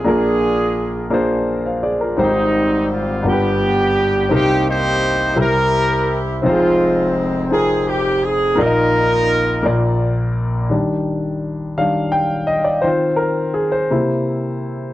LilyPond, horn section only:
\new Staff \with { instrumentName = "Horn section" } { \time 6/8 \key ees \major \tempo 4. = 56 << { aes'4. r4. | ees'4 f'8 g'4. | g'8 c''4 bes'4 r8 | f'4 r8 aes'8 g'8 aes'8 |
bes'2 r4 | r2. | r2. | } \\ { <d' f'>4. r4. | <g c'>4. <b d'>4. | <bes ees'>8 <ees' g'>4 <e' g'>4. | <aes c'>4. r4. |
<ees' f'>2 r4 | r2. | r2. | } >> }